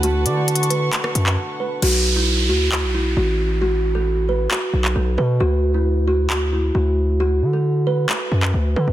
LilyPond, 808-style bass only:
\new Staff \with { instrumentName = "808-style bass" } { \clef bass \time 4/4 \key b \minor \tempo 4 = 134 d,8 d4. r8 fis,8 r4 | b,,4. d,8. b,,8. a,,4~ | a,,2 r8 b,,8 b,,8 b,8 | d,2. d,4~ |
d,8 d4. r8 fis,8 d,8 d16 d,16 | }